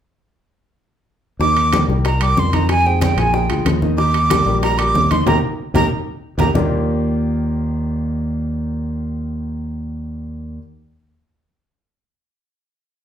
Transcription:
1.39 D#2 D#3 D#4 D#5 D6, high bongo, high conga
1.57 high bongo, high conga, high timbale
1.73 G3 G4 A#4, high bongo, high conga, high timbale
1.88 C2 G3 G4 A#4, high bongo
2.05 A#5, high bongo, high conga, high timbale
2.21 G3 G4 A#4 D6, high bongo, high conga, high timbale
2.37 F2 C6, high bongo, low bongo, high conga, low timbale
2.53 D#3 D#4 D#5 A#5, high conga, high timbale
2.69 G#5, high bongo, high conga, high timbale
2.85 G#3 G#4 C5 G5, high bongo, high conga
3.01 G5, high bongo, high conga, high timbale
3.17 A#1 F3 F4 G#4 G#5, high bongo, high conga, high timbale
3.34 G5, high bongo, high conga
3.50 D2 F3 F4 G#4, high bongo, high conga, high timbale
3.65 D#2, high bongo, low bongo, high conga, high timbale
3.82 D#3 D#4 D#5, high conga
3.98 D#3 D#4 D#5 D6, high bongo, high conga
4.14 high bongo, high conga, high timbale
4.30 G3 G4 A#4, high bongo, high conga, high timbale
4.46 A#1 G3 G4 A#4, high bongo
4.63 A#5, high bongo, high conga, high timbale
4.78 G3 G4 A#4 D6, high bongo, high conga, high timbale
4.94 D#2, high bongo, low bongo, high conga, low timbale
5.10 D#3 D#4 D#5 C6, high conga, high timbale
5.26 D#2 D#4 G4 A#4 A#5, high bongo, low conga, high timbale
5.74 D#2 D#4 G4 A#4 A#5, high bongo, low conga, high timbale
6.38 D#2 D#4 G4 A#4 A#5, high bongo, low conga, high timbale
6.54 D#2 D#3 A#3 D4 D#4 F4 G4, low bongo, low conga, low timbale

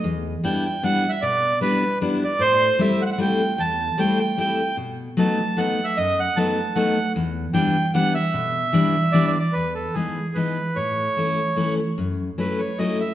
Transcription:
0.04 E2
0.44 G3 B3 D4 E4 G5
0.66 G5
0.83 G3 B3 D4 E4 F#5
1.09 E5
1.22 B2 D5
1.61 G3 B3 D4 E4 B4
2.01 G3 B3 D4 E4
2.24 D5
2.39 A2 C5
2.79 G3 A3 C4 E4 E5
3.02 F#5
3.12 F#5
3.18 G3 A3 C4 E4 G5
3.58 E2 A5
3.98 G3 A3 C4 E4 G5
4.20 G5
4.38 G3 A3 C4 E4 G5
4.77 B2
5.17 F#3 A3 B3 D#4 A5
5.57 F#3 A3 B3 D#4 F#5
5.84 E5
5.97 F#2 D#5
6.20 F#5
6.37 F#3 A3 B3 D#4 A5
6.75 F#3 A3 B3 D#4 F#5
7.16 E2
7.53 E3 G3 B3 D4 G5
7.94 E3 G3 B3 D4 F#5
8.15 E5
8.34 B2
8.73 E3 G3 B3 D4
9.12 E3 G3 B3 D4 D5
9.27 D5
9.40 D5
9.53 E2 B4
9.75 A4
9.94 E3 G#3 B3 D#4 G#4
10.35 E3 G#3 B3 D#4 B4
10.76 A2 C#5
11.17 E3 A3 C#4 E4
11.56 E3 A3 C#4 E4
11.98 F#2
12.38 F#3 A3 C#4 E4 B4
12.59 C#5
12.79 F#3 A3 C#4 E4 D#5
13.00 E5

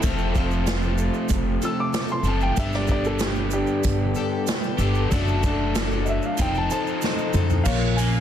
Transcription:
Already playing: E4 A4
0.01 F1 F2 C3 F3 A3 C4 F4 A4, kick, closed hi-hat, shaker
0.05 C4 A4
0.18 shaker
0.35 F4 A4, kick, shaker
0.39 C4
0.51 shaker
0.67 A3 C4 F4 A4, snare, closed hi-hat, shaker
0.82 shaker
0.98 shaker
1.14 shaker
1.29 F1, kick, closed hi-hat, shaker
1.62 C4 F4 A4 E6, shaker
1.80 D6
1.93 A3 C4 F4 A4, snare, closed hi-hat, shaker
2.08 C6, shaker
2.23 F#1 F4 A4, shaker
2.27 F2 C3 F3 A3 C4 A5
2.41 G5, shaker
2.56 G1 G2 D3 G3 B3 D4 G4 A4 E5, kick, closed hi-hat, shaker
2.72 D5, snare, shaker
2.87 D4 G4 A4, kick, shaker
2.92 D5
3.04 A4, shaker
3.19 B3 D4 G4 A4, snare, closed hi-hat, shaker
3.35 shaker
3.51 D4 G4, shaker
3.67 shaker
3.84 G1, kick, closed hi-hat, shaker
4.15 G4 A4, shaker
4.19 D4
4.47 B3 D4 G4 A4, snare, closed hi-hat, shaker
4.63 shaker
4.78 G1 G2 D3 G3 B3 G4 A4, shaker
4.83 D4
4.95 shaker
5.11 F#1 F#3 A3 D4 F#4 A4, kick, closed hi-hat, shaker
5.28 shaker
5.43 D4 F#4 A4, kick, shaker
5.75 A3 D4 F#4 A4, snare, closed hi-hat, shaker
5.91 shaker
6.04 D#5, shaker
6.09 E5
6.22 F5, shaker
6.38 F1 F3 C4 D#4 F4 A4 C5 G5, kick, closed hi-hat, shaker
6.55 A5, shaker
6.70 D#4 A4 C5 A5, shaker
6.87 shaker
7.02 C4 D#4 A4 C5, snare, shaker
7.18 shaker
7.33 F2 D#4 A4 C5, mid tom, shaker
7.50 floor tom, shaker
7.64 A#1 A#2 F3 A#3 C#4 F4 C#5 F5, kick, crash, shaker
7.96 A#3 C#4 F4 C#5 G#5, open hi-hat, shaker

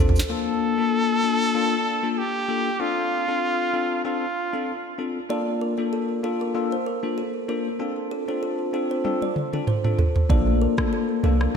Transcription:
0.00 A1 C4 D4 F4 A4
0.09 floor tom
0.16 snare, shaker
0.29 A#3 D4 F4 A4
0.78 A#3 D4 F4 A4
1.23 A#3 D4 F4 A4
1.54 A#3 D4 F4 A4
2.03 A#3 D4 F4 A4
2.11 A4
2.18 G4
2.48 A#3 D4 F4 A4
2.79 C4 D4 F4 A4
3.28 C4 D4 F4 A4
3.73 C4 D4 F4 A4
4.04 C4 D4 F4 A4
4.53 C4 D4 F4 A4
4.98 C4 D4 F4 A4
5.29 A#3 D4 F4 A4 D5
5.61 A#4
5.78 A#3 D4 F4 A4
5.93 A4
6.23 A#3 D4 F4 A4
6.41 A#4
6.54 A#3 D4 F4 A4
6.72 C5
6.86 A#4
7.03 A#3 D4 F4 A4
7.18 A4
7.48 A#3 D4 F4 A4 A#4
7.79 C4 D4 F4 A4
8.11 A4
8.28 C4 D4 F4 A4 C5
8.43 A4
8.73 C4 D4 F4 A4
8.91 C5
9.04 C4 D4 F4 A4, high tom
9.22 D5, high tom
9.36 mid tom
9.53 C4 D4 F4 A4, mid tom
9.67 C5, mid tom
9.84 C4 D4 F4 A4, mid tom
9.98 A4, floor tom
10.16 floor tom
10.29 A#1 A#3 D4 F4 A4 D5, kick, low conga
10.47 high conga
10.62 A#4
10.78 A#3 D4 F4 A4, kick, cross-stick, high conga
10.93 A4
11.23 C2 A#3 D4 F4 A4, high conga, low conga
11.41 A#4, cross-stick

